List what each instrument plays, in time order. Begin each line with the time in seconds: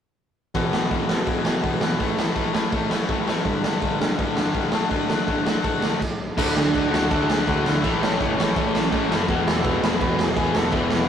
0.54 distorted electric guitar E2 B2 E3, kick, open hi-hat
0.73 distorted electric guitar E2 B2 E3, snare
0.90 distorted electric guitar E2 B2 E3, kick, open hi-hat
1.08 distorted electric guitar E2 B2 E3, snare
1.26 distorted electric guitar E2 B2 E3, kick, open hi-hat
1.45 distorted electric guitar E2 B2 E3, snare
1.63 distorted electric guitar E2 B2 E3, kick, open hi-hat
1.81 distorted electric guitar E2 B2 E3, snare
1.99 distorted electric guitar A2 E3 A3, kick, open hi-hat
2.17 distorted electric guitar A2 E3 A3, snare
2.35 distorted electric guitar A2 E3 A3, kick, open hi-hat
2.53 distorted electric guitar A2 E3 A3, snare
2.72 distorted electric guitar A2 E3 A3, kick, open hi-hat
2.90 distorted electric guitar A2 E3 A3, snare
3.08 distorted electric guitar A2 E3 A3, kick, open hi-hat
3.27 distorted electric guitar A2 E3 A3, snare
3.45 distorted electric guitar G2 D3 G3, kick, open hi-hat
3.62 distorted electric guitar G2 D3 G3, snare
3.82 distorted electric guitar G2 D3 G3, kick, open hi-hat
4.00 distorted electric guitar G2 D3 G3, snare
4.17 distorted electric guitar G2 D3 G3, kick, open hi-hat
4.36 distorted electric guitar G2 D3 G3, snare
4.54 distorted electric guitar G2 D3 G3, kick, open hi-hat
4.72 distorted electric guitar D3 A3 D4, snare
4.89 distorted electric guitar D3 A3 D4, kick, open hi-hat
5.10 distorted electric guitar D3 A3 D4, snare
5.28 distorted electric guitar D3 A3 D4, kick, open hi-hat
5.45 distorted electric guitar D3 A3 D4, snare
5.63 distorted electric guitar D3 A3 D4, kick, open hi-hat
5.82 distorted electric guitar D3 A3 D4, snare
6.01 kick, crash
6.37 picked electric bass D2, distorted electric guitar D3 A3 D4, lead electric guitar E4 E5, kick, crash
6.53 picked electric bass D2, lead electric guitar D4 D5, snare
6.74 picked electric bass D2, distorted electric guitar D3 A3 D4, kick, crash
6.90 picked electric bass D2, distorted electric guitar D3 A3, lead electric guitar F#4 F#5, snare
6.94 distorted electric guitar D4
7.10 picked electric bass D2, distorted electric guitar D3 A3 D4, lead electric guitar A4 A5, kick, crash
7.30 picked electric bass D2, lead electric guitar G#4 G#5, snare
7.46 picked electric bass D2, distorted electric guitar D3 A3 D4, lead electric guitar F#4 F#5, kick, crash
7.65 picked electric bass D2, distorted electric guitar D3 A3 D4, lead electric guitar E4 E5, snare
7.84 picked electric bass A1, distorted electric guitar A2 E3 A3, kick, crash
8.03 picked electric bass A1, lead electric guitar C#4 C#5, snare
8.19 picked electric bass F#1, distorted electric guitar A2 E3 A3, lead electric guitar C#4, kick, crash
8.23 lead electric guitar C#5
8.37 picked electric bass A1, distorted electric guitar A2 E3 A3, snare
8.55 picked electric bass A1, distorted electric guitar A2 E3 A3, kick, crash
8.75 snare
8.92 picked electric bass A1, distorted electric guitar A2 E3 A3, kick, crash
9.09 picked electric bass F#1, distorted electric guitar A2 E3 A3, snare
9.28 picked electric bass E1, distorted electric guitar E2 B2 E3, kick, crash
9.46 picked electric bass E1, lead electric guitar E4 E5, snare
9.64 picked electric bass E1, distorted electric guitar E2 B2 E3, kick, crash
9.82 picked electric bass E1, distorted electric guitar E2 B2 E3, lead electric guitar B4 B5, snare
10.01 picked electric bass E1, distorted electric guitar E2 B2 E3, lead electric guitar B4 B5, kick, crash
10.18 picked electric bass E1, lead electric guitar G#4 G#5, snare
10.37 picked electric bass E1, distorted electric guitar E2 B2 E3, lead electric guitar G#4 G#5, kick, crash
10.53 picked electric bass E1, distorted electric guitar E2 B2 E3, lead electric guitar A4 A5, snare
10.72 picked electric bass E1, distorted electric guitar E2 B2 E3, lead electric guitar E4 E5, kick, crash
10.90 picked electric bass E1, snare